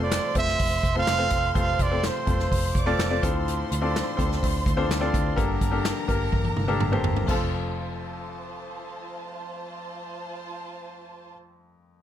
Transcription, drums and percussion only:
0.11 snare, clap, hi-hat pedal, open hi-hat
0.35 kick, hi-hat pedal, open hi-hat
0.48 snare
0.59 kick, hi-hat pedal, open hi-hat
0.83 kick, hi-hat pedal, open hi-hat
1.07 snare, clap, hi-hat pedal, open hi-hat
1.30 kick, hi-hat pedal, open hi-hat
1.55 kick, hi-hat pedal, open hi-hat
1.79 kick, hi-hat pedal, open hi-hat
2.03 snare, clap, hi-hat pedal, open hi-hat
2.27 kick, hi-hat pedal, open hi-hat
2.40 snare
2.52 kick, hi-hat pedal, open hi-hat
2.75 kick, hi-hat pedal, open hi-hat
2.99 snare, clap, hi-hat pedal, open hi-hat
3.23 kick, hi-hat pedal, open hi-hat
3.48 hi-hat pedal, open hi-hat
3.72 hi-hat pedal, open hi-hat
3.96 snare, clap, hi-hat pedal, open hi-hat
4.19 kick, hi-hat pedal, open hi-hat
4.32 snare
4.43 kick, hi-hat pedal, open hi-hat
4.66 kick, hi-hat pedal, open hi-hat
4.91 snare, clap, hi-hat pedal, open hi-hat
5.14 kick, hi-hat pedal, open hi-hat
5.38 kick, hi-hat pedal, open hi-hat
5.61 kick, hi-hat pedal, open hi-hat
5.85 snare, clap, hi-hat pedal, open hi-hat
6.09 kick, hi-hat pedal, open hi-hat
6.32 kick, high tom
6.44 high tom
6.57 mid tom
6.69 mid tom
6.80 mid tom
6.93 mid tom
7.04 floor tom
7.16 floor tom
7.29 kick, crash

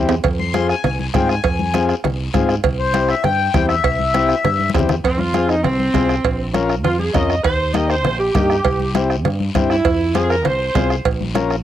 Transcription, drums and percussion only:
0.09 bombo rim, low timbale, short guiro
0.24 bombo low, bombo rim, cowbell, high conga, low conga, long guiro
0.39 high conga
0.54 bombo rim, cowbell, high conga, short guiro
0.69 bombo rim, short guiro
0.84 bombo rim, cowbell, high conga, low conga, long guiro
0.99 high conga
1.14 bombo low, bombo rim, cowbell, high conga, low conga, short guiro
1.29 bombo rim, short guiro
1.44 bombo low, bombo rim, cowbell, high conga, long guiro
1.59 high conga
1.74 bombo rim, cowbell, high conga, short guiro
1.89 bombo rim, short guiro
2.04 bombo rim, cowbell, high conga, low conga, long guiro
2.34 bombo low, bombo rim, cowbell, high conga, low conga, short guiro
2.49 bombo rim, short guiro
2.64 bombo low, bombo rim, cowbell, high conga, low conga, long guiro
2.94 bombo rim, cowbell, high conga, short guiro
3.09 bombo rim, short guiro
3.24 bombo rim, cowbell, high conga, low conga, long guiro
3.54 bombo low, bombo rim, cowbell, high conga, low conga, short guiro
3.69 bombo rim, short guiro
3.84 bombo low, bombo rim, cowbell, high conga, long guiro
3.99 high conga
4.14 bombo rim, cowbell, high conga, short guiro
4.29 bombo rim, short guiro
4.44 bombo rim, cowbell, high conga, low conga, long guiro
4.59 high conga
4.70 high conga
4.74 bombo low, bombo rim, cowbell, low timbale, short guiro
4.79 low conga
4.89 bombo rim, low conga, short guiro
5.04 bombo low, bombo rim, cowbell, high conga, long guiro
5.19 high conga
5.34 bombo rim, cowbell, high conga, short guiro
5.49 bombo rim, short guiro
5.64 bombo rim, cowbell, high conga, low conga, long guiro
5.79 high conga
5.94 bombo low, bombo rim, cowbell, high conga, low conga, low timbale, short guiro
6.09 bombo rim, short guiro
6.24 bombo low, bombo rim, cowbell, high conga, long guiro
6.54 bombo rim, cowbell, high conga, short guiro
6.69 bombo rim, short guiro
6.84 bombo rim, cowbell, high conga, low conga, long guiro
6.99 high conga
7.14 bombo low, bombo rim, cowbell, high conga, low conga, low timbale, short guiro
7.30 bombo rim, short guiro
7.44 bombo low, bombo rim, cowbell, high conga, long guiro
7.74 bombo rim, cowbell, high conga, short guiro
7.90 bombo rim, short guiro
8.05 bombo rim, cowbell, high conga, low conga, long guiro
8.35 bombo low, bombo rim, cowbell, high conga, low conga, short guiro
8.50 bombo rim, short guiro
8.64 bombo low, bombo rim, cowbell, high conga, long guiro
8.80 high conga
8.95 bombo rim, cowbell, high conga, short guiro
9.10 bombo rim, short guiro
9.25 bombo rim, cowbell, high conga, low conga, long guiro
9.40 high conga
9.55 bombo low, bombo rim, cowbell, high conga, low conga, short guiro
9.70 bombo rim, short guiro
9.85 bombo low, bombo rim, cowbell, high conga, long guiro
10.15 bombo rim, cowbell, high conga, short guiro
10.30 bombo rim, short guiro
10.45 bombo rim, cowbell, high conga, low conga, long guiro
10.75 bombo low, bombo rim, cowbell, high conga, low conga, low timbale, short guiro
10.90 bombo rim, short guiro
11.05 bombo low, bombo rim, cowbell, high conga, long guiro
11.21 high conga
11.35 bombo rim, cowbell, high conga, short guiro
11.50 bombo rim, short guiro

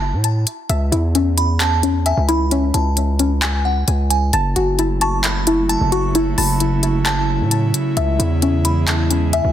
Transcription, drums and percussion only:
0.24 closed hi-hat
0.47 closed hi-hat
0.69 closed hi-hat
0.92 closed hi-hat
1.15 closed hi-hat
1.38 closed hi-hat
1.60 clap, closed hi-hat
1.83 closed hi-hat
2.06 closed hi-hat
2.29 closed hi-hat
2.51 closed hi-hat
2.74 closed hi-hat
2.97 closed hi-hat
3.19 closed hi-hat
3.42 clap, closed hi-hat
3.88 closed hi-hat
4.10 closed hi-hat
4.33 closed hi-hat
4.56 closed hi-hat
4.79 closed hi-hat
5.01 closed hi-hat
5.24 clap, closed hi-hat
5.47 closed hi-hat
5.69 closed hi-hat
5.92 closed hi-hat
6.15 closed hi-hat
6.38 open hi-hat
6.60 closed hi-hat
6.83 closed hi-hat
7.06 clap, closed hi-hat
7.51 closed hi-hat
7.74 closed hi-hat
7.97 closed hi-hat
8.20 closed hi-hat
8.42 closed hi-hat
8.65 closed hi-hat
8.88 clap, closed hi-hat
9.11 closed hi-hat
9.33 closed hi-hat

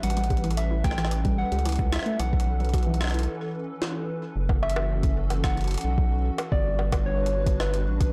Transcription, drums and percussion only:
0.03 closed hi-hat
0.10 closed hi-hat
0.17 closed hi-hat
0.24 closed hi-hat
0.30 kick, closed hi-hat
0.37 closed hi-hat
0.44 closed hi-hat
0.51 closed hi-hat
0.57 closed hi-hat
0.84 kick, cross-stick, closed hi-hat
0.91 cross-stick
0.98 cross-stick, closed hi-hat
1.05 cross-stick
1.11 closed hi-hat
1.25 kick, closed hi-hat
1.52 closed hi-hat
1.59 closed hi-hat
1.66 closed hi-hat
1.69 closed hi-hat
1.72 closed hi-hat
1.76 kick, closed hi-hat
1.79 closed hi-hat
1.93 cross-stick, closed hi-hat
1.96 cross-stick
1.99 cross-stick
2.03 cross-stick, closed hi-hat
2.20 closed hi-hat
2.33 kick
2.40 closed hi-hat
2.60 closed hi-hat
2.65 closed hi-hat
2.69 closed hi-hat
2.74 kick, closed hi-hat
2.78 closed hi-hat
2.83 closed hi-hat
2.94 closed hi-hat
3.01 cross-stick, closed hi-hat
3.04 cross-stick
3.07 cross-stick, closed hi-hat
3.11 cross-stick, closed hi-hat
3.19 closed hi-hat
3.23 closed hi-hat
3.82 snare
4.49 kick, high bongo
4.63 high bongo
4.70 closed hi-hat
4.76 high bongo
5.03 kick, closed hi-hat
5.30 closed hi-hat, high bongo
5.44 kick, cross-stick
5.57 closed hi-hat
5.61 closed hi-hat
5.64 closed hi-hat
5.68 closed hi-hat
5.71 closed hi-hat
5.74 closed hi-hat
5.78 closed hi-hat
5.81 closed hi-hat
5.98 kick
6.38 closed hi-hat, high bongo
6.52 kick
6.79 high bongo
6.92 kick, closed hi-hat, high bongo
7.26 closed hi-hat
7.46 kick, closed hi-hat
7.60 cross-stick
7.74 closed hi-hat
8.01 kick, closed hi-hat

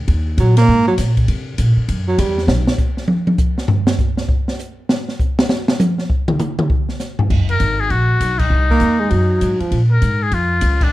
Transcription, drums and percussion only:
0.08 kick, ride
0.38 kick, hi-hat pedal, ride
0.57 snare, ride
0.68 kick
0.98 kick, snare, hi-hat pedal, ride
1.17 kick, ride
1.28 kick, ride
1.58 kick, hi-hat pedal, ride
1.89 kick, ride
2.18 kick, hi-hat pedal, ride
2.38 snare
2.48 snare
2.67 snare
2.78 kick, hi-hat pedal
2.97 snare
3.08 high tom
3.27 high tom
3.38 kick, hi-hat pedal
3.58 snare
3.68 floor tom
3.87 snare
3.98 kick, hi-hat pedal
4.17 snare
4.29 kick
4.48 snare
4.59 hi-hat pedal
4.89 snare
5.08 snare
5.20 kick, hi-hat pedal
5.39 snare
5.49 snare
5.68 snare
5.79 hi-hat pedal, high tom
5.98 snare
6.10 kick
6.28 mid tom
6.39 hi-hat pedal, mid tom
6.59 mid tom
6.70 kick
6.89 snare
6.99 snare, hi-hat pedal
7.19 floor tom
7.30 kick, crash
7.49 ride
7.60 kick, hi-hat pedal, ride
7.90 kick, ride
8.21 kick, hi-hat pedal, ride
8.39 kick, crash
8.70 kick
8.80 hi-hat pedal, ride
9.11 kick, ride
9.41 kick, hi-hat pedal, ride
9.60 ride
9.72 kick, ride
10.02 kick, hi-hat pedal, ride
10.32 kick, ride
10.61 kick, hi-hat pedal, ride
10.81 kick, crash

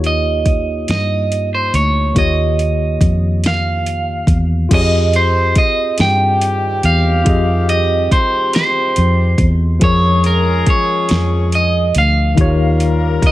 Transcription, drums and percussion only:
0.04 closed hi-hat
0.46 kick, closed hi-hat
0.88 snare, closed hi-hat
1.32 closed hi-hat
1.74 closed hi-hat
2.16 kick, closed hi-hat
2.59 closed hi-hat
3.01 kick, closed hi-hat
3.44 snare, closed hi-hat
3.86 closed hi-hat
4.27 kick, closed hi-hat
4.71 kick, closed hi-hat, crash
5.13 closed hi-hat
5.55 kick, closed hi-hat
5.98 snare, closed hi-hat
6.41 closed hi-hat
6.83 closed hi-hat
7.26 kick, closed hi-hat
7.69 closed hi-hat
8.11 kick, closed hi-hat
8.53 snare, closed hi-hat
8.96 closed hi-hat
9.38 kick, closed hi-hat
9.81 kick, closed hi-hat
10.24 closed hi-hat
10.66 kick, closed hi-hat
11.09 snare, closed hi-hat
11.52 closed hi-hat
11.95 closed hi-hat
12.37 kick, closed hi-hat
12.80 closed hi-hat
13.22 kick, closed hi-hat

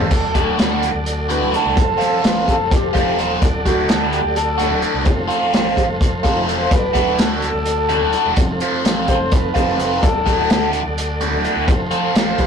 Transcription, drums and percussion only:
0.00 floor tom
0.11 kick, closed hi-hat, splash, high conga, low conga
0.35 kick, closed hi-hat
0.47 low conga
0.59 snare, closed hi-hat
0.83 snare, closed hi-hat
0.95 high conga, low conga
1.06 closed hi-hat
1.30 closed hi-hat, low conga
1.54 snare, closed hi-hat
1.76 kick, closed hi-hat, high conga, low conga
2.01 snare, closed hi-hat
2.12 low conga
2.24 snare, closed hi-hat
2.48 kick, closed hi-hat
2.59 high conga, low conga
2.71 kick, closed hi-hat
2.95 kick, closed hi-hat, low conga
3.19 closed hi-hat
3.42 kick, closed hi-hat, high conga, low conga
3.66 kick, closed hi-hat
3.78 low conga
3.89 snare, closed hi-hat
4.13 closed hi-hat
4.24 high conga, low conga
4.36 closed hi-hat
4.59 snare, closed hi-hat, low conga
4.82 closed hi-hat
5.05 kick, closed hi-hat, high conga, low conga
5.30 closed hi-hat, low conga
5.43 low conga
5.53 snare, closed hi-hat
5.66 low conga
5.77 kick, closed hi-hat
5.89 high conga, low conga
6.01 kick, closed hi-hat, low conga
6.12 low conga
6.23 kick, snare, closed hi-hat, low conga
6.47 closed hi-hat, low conga
6.71 kick, closed hi-hat, high conga, low conga
6.95 kick, closed hi-hat
7.07 low conga
7.19 snare, closed hi-hat
7.42 snare, closed hi-hat
7.55 high conga, low conga
7.66 closed hi-hat
7.89 closed hi-hat, low conga
8.13 closed hi-hat
8.36 kick, closed hi-hat, high conga, low conga
8.60 closed hi-hat
8.73 low conga
8.85 snare, closed hi-hat
9.08 kick, closed hi-hat
9.20 high conga, low conga
9.32 kick, snare, closed hi-hat
9.56 kick, closed hi-hat, low conga
9.80 closed hi-hat
10.03 kick, closed hi-hat, high conga, low conga
10.27 kick, closed hi-hat
10.38 low conga
10.50 snare, closed hi-hat
10.73 closed hi-hat
10.84 high conga, low conga
10.98 closed hi-hat
11.20 closed hi-hat, low conga
11.44 closed hi-hat
11.68 kick, closed hi-hat, high conga, low conga
11.91 closed hi-hat
12.03 low conga
12.15 snare, closed hi-hat
12.38 kick, snare, closed hi-hat

